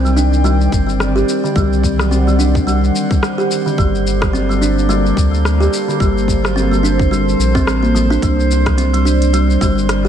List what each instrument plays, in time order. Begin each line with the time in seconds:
Already playing: sub bass C2, ambient pad D#3 C4 D5 G5, synth texture C5
0.05 kalimba G3, shaker
0.17 kalimba D4, shaker
0.33 shaker
0.44 kalimba G3, shaker
0.61 shaker
0.72 sub bass G1, kick, shaker
0.89 shaker
1.00 cross-stick, shaker
1.16 kalimba G4, shaker
1.29 shaker
1.44 kalimba D3, shaker
1.56 sub bass C2, kalimba G3, ambient pad F#5, kick, shaker
1.73 shaker
1.84 kick, shaker
1.99 kalimba F#3, cross-stick, shaker
2.11 kalimba C4, shaker
2.27 kalimba G3, shaker
2.39 kalimba D4, shaker
2.55 kick, shaker
2.67 kalimba G3, shaker
2.84 shaker
2.96 shaker
3.11 kick, shaker
3.23 cross-stick, shaker
3.38 kalimba G4, shaker
3.51 shaker
3.66 kalimba D3, shaker
3.78 sub bass G1, kalimba G3, ambient pad A#3 A4 D5, kick, shaker
3.95 shaker
4.07 shaker
4.22 kalimba F#3, kick, cross-stick, shaker
4.33 kalimba C4, shaker
4.49 kalimba G3, shaker
4.62 kalimba D4, shaker
4.78 shaker
4.89 kalimba G3, shaker
5.06 shaker
5.17 sub bass D2, kick, shaker
5.34 shaker
5.45 cross-stick, shaker
5.60 kalimba G4, shaker
5.74 shaker
5.88 kalimba D3, shaker
6.00 sub bass G1, kalimba G3, ambient pad C5, kick, shaker
6.18 shaker
6.28 kick, shaker
6.44 kalimba F#3, cross-stick, shaker
6.56 kalimba C4, shaker
6.71 kalimba G3, shaker
6.83 kalimba D4, shaker
6.99 kick, shaker
7.11 kalimba G3, shaker
7.29 shaker
7.39 sub bass A#1, shaker
7.55 kalimba C4, kick, shaker
7.67 sub bass A1, cross-stick, shaker
7.83 kalimba A#3, shaker
7.95 kalimba F#3, shaker
8.10 kalimba D4, shaker
8.22 sub bass C2, kalimba G3, ambient pad D5, kick, closed hi-hat, shaker
8.40 shaker
8.51 shaker
8.66 kalimba F#3, kick, cross-stick, closed hi-hat, shaker
8.78 kalimba C4, closed hi-hat, shaker
8.93 kalimba G3, closed hi-hat, shaker
9.05 kalimba D4, shaker
9.22 closed hi-hat, shaker
9.33 kalimba G3, closed hi-hat, shaker
9.50 shaker
9.61 sub bass G1, kalimba G3, kick, shaker
9.78 shaker
9.89 cross-stick, closed hi-hat, shaker
10.05 kalimba G4